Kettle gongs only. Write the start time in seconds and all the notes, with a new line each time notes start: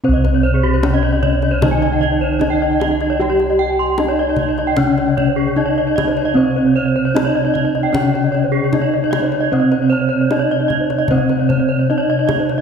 0.04 C4
0.08 C2
0.83 C#4
2.41 C#4
3.20 G4
3.98 C#4
4.77 C3
5.57 C#4
6.35 C4
7.15 C#4
7.94 C3
8.72 C#4
9.52 C4
10.31 C#4
11.11 C3
11.89 C#4